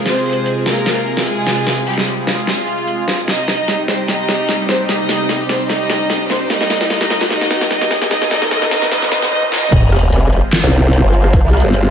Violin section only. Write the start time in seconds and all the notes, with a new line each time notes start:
0.06 C4 C5
0.66 A#3 A#4
1.26 G#3 G#4
1.87 G3 G4
2.27 F4
3.28 D#4 D#5
3.88 C4 C5
4.08 D#4 D#5
4.69 C4 C5
4.89 D#4 D#5
5.49 C4 C5
5.69 D#4 D#5
6.30 C4 C5
6.50 D#4 D#5
6.90 D#4 D#5
7.30 D#4 D#5
7.71 D#4 D#5
8.11 D#4 D#5
8.31 D#4 D#5
8.51 D#4 D#5
8.71 D#4 D#5
8.92 D#4 D#5
9.12 D#4 D#5
9.32 D#4 D#5
9.52 D#4 D#5